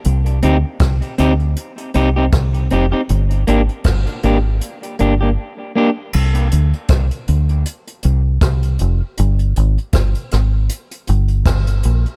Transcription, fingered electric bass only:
X:1
M:4/4
L:1/16
Q:"Swing 16ths" 1/4=79
K:Gphr
V:1 name="Fingered electric bass" clef=bass
C,,2 D,, z C,, z D,,2 z2 C,,2 C,,2 F,,, z | G,,,2 A,,, z G,,, z A,,,2 z2 G,,,2 z4 | C,,2 D,, z C,, z D,,2 z2 C,,2 C,,2 F,,, z | G,,,2 A,,, z G,,, z A,,,2 z2 G,,,2 G,,,2 B,,, z |]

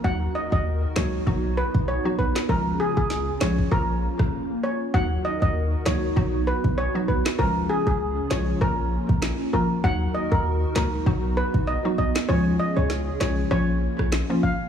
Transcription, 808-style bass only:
X:1
M:4/4
L:1/16
Q:"Swing 16ths" 1/4=98
K:Ebm
V:1 name="808-style bass" clef=bass
E,,2 z E,,3 D,,2 =B,,,3 B,,,2 z _B,,, z | D,,2 z D,,3 C,,2 B,,,3 B,,, z4 | E,,2 z E,,3 D,,2 =B,,,3 B,,,2 z _B,,, z | D,,2 z D,,3 C,,2 B,,,3 B,,,2 z A,,, z |
E,,2 z E,,3 D,,2 =B,,,3 B,,,2 z _B,,, z | D,,2 z D,,3 C,,2 B,,,3 B,,,2 z A,,, z |]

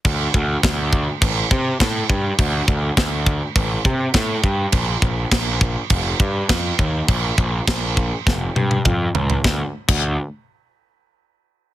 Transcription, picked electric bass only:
X:1
M:4/4
L:1/16
Q:1/4=102
K:Dphr
V:1 name="Picked electric bass" clef=bass
D,,2 D,,2 D,,4 A,,,2 C,2 A,,2 G,,2 | D,,2 D,,2 D,,4 A,,,2 C,2 A,,2 G,,2 | B,,,2 B,,,2 B,,,4 F,,,2 G,,2 F,,2 E,,2 | B,,,2 B,,,2 B,,,4 F,,,2 G,,2 F,,2 ^C,,2 |
D,, z2 D,,2 z8 z3 |]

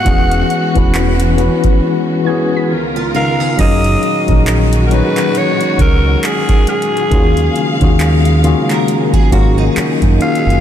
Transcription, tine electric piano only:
X:1
M:4/4
L:1/16
Q:"Swing 16ths" 1/4=68
K:F#
V:1 name="Tine electric piano"
[=E,B,CFG]2 z [E,B,CFB]2 z [E,B,CFB]3 z [E,B,CFG]2 z2 [C,B,D^EA]2 | [F,CDGA]2 z [F,CDGA]2 z [F,CDGc]6 z4 | [D,A,CEFG]2 z [D,A,CEFG]2 z [D,A,CEFG]3 z [D,A,CEFA]3 z [D,A,CEFG]2 |]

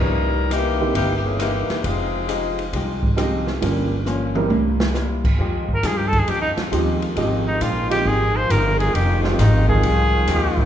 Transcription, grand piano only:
X:1
M:4/4
L:1/8
Q:"Swing" 1/4=135
K:Fm
V:1 name="Grand piano"
z3 [=E,B,C^DG] z4 | z6 [F,A,CEG] z | [G,B,DFG] z2 [G,B,C=EB] z4 | z6 [F,A,CEG] z |
[F,A,CEG] z2 [F,A,CEG] z4 | z [F,A,CEG]2 [F,A,CEB] z4 |]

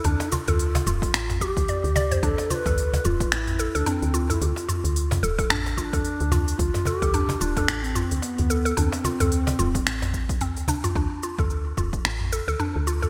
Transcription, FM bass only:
X:1
M:4/4
L:1/16
Q:"Swing 16ths" 1/4=110
K:Ddor
V:1 name="FM bass" clef=bass
D,, z2 D,,3 D,,, z A,,,3 D,, z D,,3 | D,, z2 D,,3 D,,, z A,,,3 D,, z D,,3 | D,, z2 D,,3 D,,, z A,,,3 D,, z D,,3 | D,, z2 D,,3 D,,, z A,,,3 D,, z D,,3 |
D,, z2 D,,3 D,,, z A,,,3 C,,2 D,,3 | D,, z2 D,,3 D,,, z A,,,3 D,, z D,,3 |]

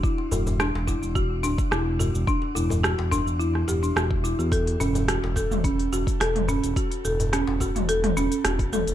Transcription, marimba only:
X:1
M:4/4
L:1/16
Q:"Swing 16ths" 1/4=107
K:F#phr
V:1 name="Marimba"
E z F z D z E2 F2 D2 E z F z | D z E2 F2 D2 E z G D F z E F | A2 C2 F z A z C z F2 A2 C2 | F z A z C z F2 A2 C2 F z A z |]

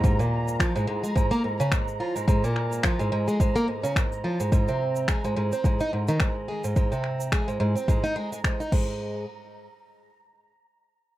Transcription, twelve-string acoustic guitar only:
X:1
M:4/4
L:1/16
Q:"Swing 16ths" 1/4=107
K:Abmix
V:1 name="Twelve-string acoustic guitar" clef=bass
A,, B,,3 F, A,, A,, A, A,, B, A,, D, A,,2 F, A,, | A,, B,,3 F, A,, A,, A, A,, B, A,, D, A,,2 F, A,, | A,, C,3 A, A,, A,, C A,, E A,, E, A,,2 A, A,, | A,, C,3 A, A,, A,, C A,, E A, A, A,, E A,,2- |
A,,2 z12 z2 |]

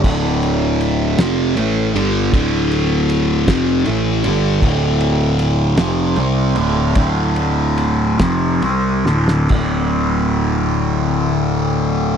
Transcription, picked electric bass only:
X:1
M:6/8
L:1/8
Q:3/8=51
K:Dm
V:1 name="Picked electric bass" clef=bass
D,,,3 F,,, A,,, G,,, | D,,,3 F,,, A,,, G,,, | D,,,3 F,,, C,, D,,, | D,,,3 F,,, C,, D,,, |
D,,,6 |]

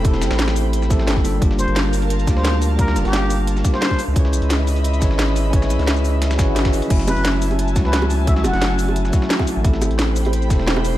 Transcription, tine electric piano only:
X:1
M:4/4
L:1/8
Q:1/4=175
K:C#m
V:1 name="Tine electric piano"
[A,=CE=GA]4- [A,CEGA] [A,CEGA]2 [=G,_B,=D=FA] | [=G,_B,=D=F=G]4- [G,B,DFG] [G,B,DFG]3 | [=G,_B,=D=F=G]4- [G,B,DFG] [G,B,DFG]2 z | [CEGBc]4- [CEGBc] [CEGBc]3 |
[CEGBc]4- [CEGBc] [CEGBc]2 [CEGBd] | [F,A,CEF]4- [F,A,CEF] [F,A,CEF]3 | [F,A,CEF]4- [F,A,CEF] [F,A,CEF]3 | [A,=CE=GA]4- [A,CEGA] [A,CEGA]3 |]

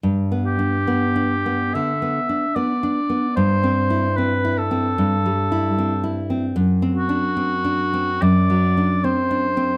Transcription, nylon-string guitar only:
X:1
M:4/4
L:1/8
Q:1/4=74
K:G
V:1 name="Nylon-string guitar"
(3G,, B, D (3B, D B, (3D, B, D (3B, D B, | (3G,, C E (3C E C (3G,, G, E (3C E C | (3F,, C D (3C D C (3F,, F, D (3C D C |]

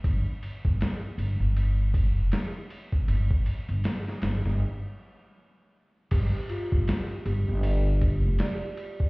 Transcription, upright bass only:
X:1
M:4/4
L:1/16
Q:"Swing 16ths" 1/4=79
K:Dphr
V:1 name="Upright bass" clef=bass
G,,, z2 G,,, z2 G,,, G,,,4 F,,, z4 | G,,, z2 G,,, z2 G,,, G,,, z8 | G,,, z2 G,,, z2 G,,, G,,,4 F,,, z4 |]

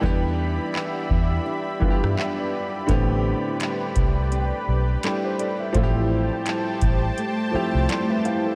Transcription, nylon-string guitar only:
X:1
M:4/4
L:1/8
Q:"Swing 16ths" 1/4=84
K:Am
V:1 name="Nylon-string guitar"
E,2 B,2 D2 [B,DG]2 | A,,2 G,2 C2 [G,CD]2 | A,,2 G,2 A,2 [G,A,E]2 |]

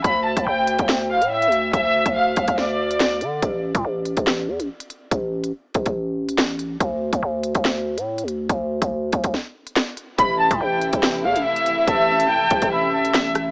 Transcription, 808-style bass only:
X:1
M:4/4
L:1/16
Q:1/4=142
K:Am
V:1 name="808-style bass" clef=bass
D,,3 D,, D,,3 D,,4 A,,2- A,,/2 D,,2- D,,/2 | D,,3 D,,3 D,, D,,6- D,, D,2 | A,,,3 A,, A,,,3 A,,,3 E,, A,,, z4 | A,,,4 z2 A,,, A,,,8- A,,, |
D,,3 D,, D,,3 D,,4 A,,2- A,,/2 D,,2- D,,/2 | D,,3 D,,3 D,, D,, z8 | A,,,3 A,, A,,,3 A,,,3 E,, A,,, z4 | A,,,4 z2 A,,, A,,,8- A,,, |]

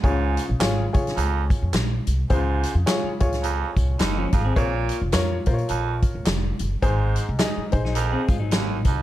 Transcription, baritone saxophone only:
X:1
M:4/4
L:1/16
Q:"Swing" 1/4=106
K:Db
V:1 name="Baritone saxophone" clef=bass
A,,3 z4 z F,,2 z6 | A,,3 z4 z F,,2 z2 E,,2 F,,2 | B,,3 z4 z F,,2 z6 | A,,3 z4 z F,,2 z2 E,,2 F,,2 |]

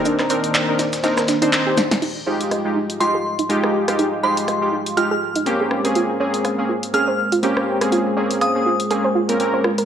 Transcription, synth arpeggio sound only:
X:1
M:4/4
L:1/16
Q:"Swing 16ths" 1/4=122
K:Fm
V:1 name="Synth arpeggio sound"
=D z c z =d z D z E B D E z G D E | E z c z e z E z F A z E z A z G | E z c z e z E z F A z E z A z B | F z d z f z F z A c z F z c z B |
F z d z f z F z A c F B z c F B |]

